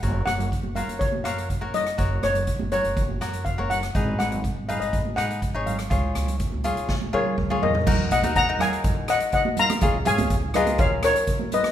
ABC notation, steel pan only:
X:1
M:4/4
L:1/16
Q:1/4=123
K:F#
V:1 name="Steel pan"
f2 f4 e2 c2 e4 d2- | d2 c4 c6 e2 f2- | f2 f4 e d3 f4 e2- | e8- e2 [Ac]4 [Ad]2- |
[Ad]2 [df]2 [fa]2 [eg]4 [df]2 [df]2 [ea]2- | [ea]2 [eg]4 [Bd]2 [ce]2 [Ac]4 [Bd]2 |]